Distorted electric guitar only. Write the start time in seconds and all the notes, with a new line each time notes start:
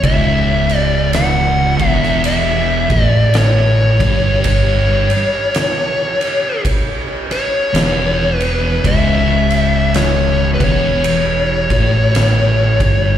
0.03 C#2
1.80 E2
2.91 A2
4.00 G2
7.73 E2
8.84 C#2
10.60 E2
11.70 A2
12.80 G2